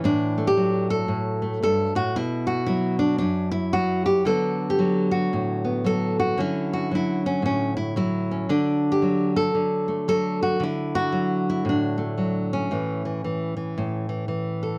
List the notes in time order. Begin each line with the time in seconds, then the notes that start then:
Already playing: E3
0.04 A2 D4
0.38 A3
0.47 G4
0.57 F#3
0.90 A4
1.08 A2
1.42 A3
1.63 G2 A4
1.95 A2 F#4
2.16 B2 E4
2.47 F#4
2.66 F#3 E4
2.99 D4
3.18 F#2 D4
3.51 E4
3.73 F#3 F#4
4.06 G4
4.25 D3 F#3 B3 A4
4.70 G4
4.79 F#3
5.11 F#4
5.33 A2
5.65 B3
5.84 F#3 A4
6.20 F#4
6.37 D3 F#3 C#4 E4
6.73 F#4
6.91 F#3 E4
7.26 C#4
7.42 A2 C#4
7.77 E4
7.96 F#3 E4
8.31 C#4
8.49 D3 D4
8.92 G4
9.02 F#3
9.36 A4
9.55 D3
9.88 A3
10.08 F#3 A4
10.43 F#4
10.60 D3 E4
10.95 F#4
11.12 F#3
11.50 E4
11.65 A2
11.69 D4
11.98 A3
12.18 F#3
12.53 C#4
12.71 A2 E3
13.05 E3
13.24 E3
13.57 E3
13.78 A2
14.09 E3
14.28 E3
14.63 A4